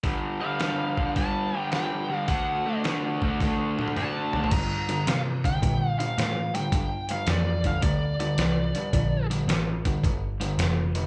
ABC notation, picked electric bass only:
X:1
M:4/4
L:1/8
Q:"Swing" 1/4=108
K:Gm
V:1 name="Picked electric bass" clef=bass
z8 | z8 | G,,2 C,2 B,,2 A,,2 | G,,2 F,,2 D,,2 C,, z |
B,,,2 A,,,2 G,,,2 F,,,2 |]